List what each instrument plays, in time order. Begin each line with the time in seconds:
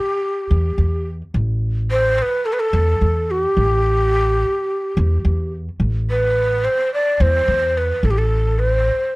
Already playing: ney G4
0.51 upright bass E2
0.78 upright bass E2
1.34 upright bass A1
1.91 ney C5
2.19 ney B4 C5
2.45 ney A4
2.53 ney B4
2.60 ney A4
2.73 upright bass E2
3.01 upright bass E2
3.31 ney G4
3.57 upright bass A1
4.97 upright bass E2
5.25 upright bass E2
5.80 upright bass A1
6.10 ney B4
6.64 ney C5
6.94 ney D5
7.20 upright bass E2, ney C5
7.48 upright bass E2
7.77 ney B4
8.03 upright bass A1, ney A4
8.11 ney G4
8.18 ney A4
8.59 ney C5